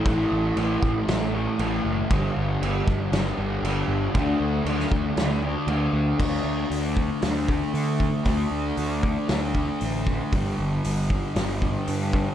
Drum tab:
CC |x---x---x---x---|x---x---x---x---|x---x---x---x---|x---------------|
HH |----------------|----------------|----------------|----o---o---o---|
SD |--------o-------|--------o-------|-----o--o-------|--------o-------|
BD |o-----o---------|o-----o---------|o-----o---------|o-----o---o---o-|

CC |----------------|----------------|
HH |o---o---o---o---|o---o---o---o---|
SD |--------o-------|--------o-------|
BD |o-----o---o---o-|o-----o---o---o-|